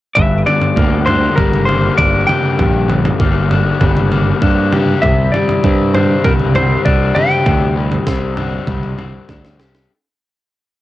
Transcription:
0.15 0.42 G1 medium
0.15 1.68 G2 medium
0.15 0.46 E5 medium
0.15 kick loud
0.15 floor tom medium
0.46 1.98 D3 medium
0.46 1.05 D5 medium
0.46 floor tom medium
0.62 floor tom medium
0.76 1.27 D2 medium
0.76 1.66 A#3 medium
0.76 kick loud
1.06 1.97 D4 medium
1.06 1.38 C5 medium
1.06 floor tom medium
1.36 1.89 G1 medium
1.36 3.80 G3 medium
1.36 1.65 A#4 medium
1.36 kick loud
1.36 floor tom medium
1.54 mid tom medium
1.66 3.19 A#3 medium
1.66 1.97 C5 medium
1.66 floor tom medium
1.97 2.24 G1 medium
1.97 3.50 D4 medium
1.97 2.26 D5 medium
1.97 kick loud
2.27 4.72 G4 medium
2.27 4.67 G5 medium
2.27 floor tom medium
2.27 mid tom medium
2.59 3.10 A#1 medium
2.59 4.11 G2 medium
2.59 kick medium
2.59 floor tom medium
2.88 4.41 D3 medium
2.88 floor tom medium
3.05 floor tom medium
3.20 3.71 G1 medium
3.20 4.10 A#3 medium
3.20 kick loud
3.51 4.41 D4 medium
3.51 floor tom medium
3.81 4.32 G1 loud
3.81 5.34 G3 medium
3.81 kick loud
3.81 floor tom medium
3.97 mid tom medium
4.11 5.02 A#3 medium
4.11 floor tom medium
4.41 4.93 G2 medium
4.41 5.07 D4 medium
4.41 kick loud
4.72 7.15 G4 medium
4.72 floor tom medium
4.72 mid tom medium
5.02 5.28 C2 medium
5.02 6.88 C3 medium
5.02 5.33 E5 medium
5.02 kick loud
5.02 floor tom medium
5.32 6.24 G3 medium
5.32 5.94 D5 medium
5.32 floor tom medium
5.49 floor tom medium
5.64 6.15 G2 loud
5.64 6.54 C4 medium
5.64 kick loud
5.95 6.84 D4 medium
5.95 6.25 C5 medium
5.95 floor tom medium
6.24 6.75 C2 medium
6.24 7.75 G3 medium
6.24 6.33 A#4 medium
6.24 kick loud
6.24 floor tom medium
6.39 mid tom medium
6.54 8.06 C4 medium
6.54 6.85 C5 medium
6.54 floor tom medium
6.85 7.11 C2 loud
6.85 8.36 D4 medium
6.85 7.13 D5 medium
6.85 kick loud
7.15 8.67 G4 medium
7.15 9.54 G5 medium
7.15 floor tom medium
7.15 mid tom medium
7.45 7.97 D2 medium
7.45 8.97 C3 medium
7.45 kick loud
7.45 floor tom medium
7.76 8.67 G3 medium
7.92 floor tom medium
8.07 8.58 C2 medium
8.07 8.96 C4 medium
8.07 kick loud
8.07 snare medium
8.37 9.28 D4 medium
8.37 floor tom medium
8.67 9.18 C2 loud
8.67 9.89 G3 medium
8.67 kick loud
8.67 floor tom medium
8.67 mid tom medium
8.83 mid tom medium
8.98 9.89 C4 medium
8.98 floor tom medium
9.29 9.56 D2 medium
9.29 9.89 D4 medium
9.29 kick loud
9.29 snare medium
9.45 snare medium
9.58 9.86 C2 medium
9.58 9.89 G4 medium
9.58 snare medium
9.75 snare medium

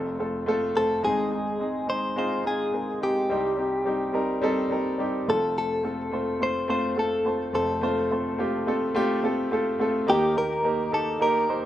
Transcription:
0.00 1.00 F1 medium
0.00 1.00 F2 medium
0.00 0.15 A3 medium
0.00 0.15 C4 medium
0.00 0.16 F4 medium
0.00 0.16 A4 medium
0.19 0.43 A3 medium
0.19 0.44 C4 medium
0.19 0.44 F4 medium
0.19 0.44 A4 medium
0.46 0.71 A3 medium
0.46 0.72 C4 medium
0.46 0.72 F4 medium
0.46 0.72 A4 loud
0.74 1.00 A3 medium
0.74 1.00 C4 medium
0.74 1.00 F4 medium
0.74 1.04 A4 medium
0.74 1.01 C5 medium
1.03 3.26 G#1 medium
1.03 3.26 G#2 medium
1.03 1.28 G#3 medium
1.03 1.28 C4 medium
1.03 1.29 D#4 medium
1.03 1.29 G#4 medium
1.03 1.89 G#4 medium
1.31 1.56 G#3 medium
1.31 1.56 C4 medium
1.31 1.57 D#4 medium
1.31 1.57 G#4 medium
1.59 1.84 G#3 medium
1.59 1.85 C4 medium
1.59 1.85 D#4 medium
1.59 1.85 G#4 medium
1.87 2.13 G#3 medium
1.87 2.13 C4 medium
1.87 2.13 D#4 medium
1.87 2.14 G#4 medium
1.87 2.17 C5 medium
2.16 2.41 G#3 medium
2.16 2.41 C4 medium
2.16 2.42 D#4 medium
2.16 2.42 F4 medium
2.16 2.47 C5 medium
2.44 2.69 G#3 medium
2.44 2.69 C4 medium
2.44 2.70 D#4 medium
2.44 2.70 F4 medium
2.44 2.99 G#4 medium
2.72 2.98 G#3 medium
2.72 2.98 C4 medium
2.72 2.98 D#4 medium
2.72 2.98 A#4 medium
3.01 3.26 G#3 medium
3.01 3.26 C4 medium
3.01 3.27 D#4 medium
3.01 5.29 G4 medium
3.01 3.27 G#4 medium
3.29 5.24 C2 medium
3.29 5.24 C3 medium
3.29 3.54 G3 medium
3.29 3.55 C4 medium
3.29 3.55 D#4 medium
3.29 3.55 G4 medium
3.57 3.82 G3 medium
3.57 3.82 C4 medium
3.57 3.83 D#4 medium
3.57 3.83 G4 medium
3.85 4.11 G3 medium
3.85 4.11 C4 medium
3.85 4.11 D#4 medium
3.85 4.11 G4 medium
4.13 4.39 G3 medium
4.13 4.39 C4 medium
4.13 4.39 D#4 medium
4.13 4.39 A#4 medium
4.41 4.67 G3 loud
4.41 4.67 C4 medium
4.41 4.68 D#4 medium
4.41 4.68 A4 loud
4.70 4.95 G3 medium
4.70 4.96 C4 medium
4.70 4.96 D#4 medium
4.70 4.96 A#4 medium
4.98 5.24 G3 medium
4.98 5.24 C4 medium
4.98 5.24 D#4 medium
4.98 5.25 G4 medium
5.27 7.50 F1 medium
5.27 7.50 F2 medium
5.27 5.77 A3 medium
5.27 5.77 C4 medium
5.27 5.78 F4 medium
5.27 5.78 A4 medium
5.27 5.57 A4 medium
5.58 6.43 A4 medium
5.83 6.08 A3 medium
5.83 6.09 C4 medium
5.83 6.09 F4 medium
5.83 6.09 A4 medium
6.11 6.37 A3 medium
6.11 6.37 C4 medium
6.11 6.38 F4 medium
6.11 6.38 C5 medium
6.39 6.65 A3 medium
6.39 6.65 C4 medium
6.39 6.66 F4 medium
6.39 6.66 C5 medium
6.39 6.68 C5 medium
6.68 6.93 A3 medium
6.68 6.93 C4 medium
6.68 6.94 F4 medium
6.68 6.94 C5 medium
6.68 6.99 C5 medium
6.96 7.21 A3 medium
6.96 7.22 C4 medium
6.96 7.22 F4 medium
6.96 7.22 A4 medium
6.96 7.54 A4 medium
7.25 7.50 A3 medium
7.25 7.50 C4 medium
7.25 7.51 F4 medium
7.25 7.51 C5 medium
7.53 9.76 F1 medium
7.53 9.76 F2 medium
7.53 7.78 A3 medium
7.53 7.78 C4 medium
7.53 7.79 F4 medium
7.53 9.77 A4 medium
7.53 7.79 C5 medium
7.81 8.07 A3 medium
7.81 8.07 C4 medium
7.81 8.07 F4 medium
7.81 8.08 C5 loud
8.10 8.35 A3 medium
8.10 8.36 C4 medium
8.10 8.36 F4 medium
8.10 8.36 C5 medium
8.38 8.63 A3 medium
8.38 8.64 C4 medium
8.38 8.64 F4 medium
8.38 8.64 G4 medium
8.66 8.91 A3 medium
8.66 8.92 C4 medium
8.66 8.92 F4 medium
8.66 8.92 A4 medium
8.94 9.20 A3 loud
8.94 9.20 C4 medium
8.94 9.20 F4 medium
8.94 9.21 G4 loud
9.23 9.48 A3 medium
9.23 9.48 C4 medium
9.23 9.49 F4 medium
9.23 9.49 A4 medium
9.51 9.76 A3 medium
9.51 9.76 C4 medium
9.51 9.77 F4 medium
9.51 9.77 A4 medium
9.79 10.04 A3 medium
9.79 10.05 C4 medium
9.79 10.05 F4 medium
9.79 10.05 A4 medium
10.07 11.65 D#2 medium
10.07 11.65 D#3 medium
10.07 10.32 A#3 medium
10.07 10.33 D#4 medium
10.07 10.33 G4 medium
10.07 10.38 G4 medium
10.07 10.33 A#4 loud
10.35 10.61 A#3 medium
10.35 10.61 D#4 medium
10.35 10.61 G4 medium
10.35 10.62 A#4 medium
10.35 10.94 A#4 loud
10.63 10.89 A#3 medium
10.63 10.89 D#4 medium
10.63 10.90 G4 medium
10.63 10.90 A#4 medium
10.91 11.17 A#3 medium
10.91 11.17 D#4 medium
10.91 11.18 G4 medium
10.91 11.18 A4 medium
10.91 11.22 A4 loud
11.20 11.45 A#3 medium
11.20 11.46 D#4 medium
11.20 11.46 G4 medium
11.20 11.46 A#4 loud
11.20 11.65 A#4 loud
11.48 11.65 A#3 medium
11.48 11.65 D#4 medium
11.48 11.65 G4 medium
11.48 11.65 C5 medium

